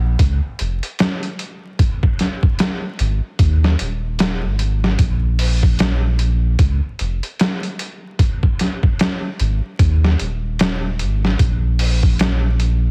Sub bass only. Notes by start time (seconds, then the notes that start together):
Already playing: A#1
0.19 C#2
0.60 F1
3.00 G#1
3.39 D#2
3.80 D#1
4.44 G#1
4.99 A#1
6.59 C#2
7.00 F1
9.40 G#1
9.80 D#2
10.20 D#1
11.00 G#1
11.39 A#1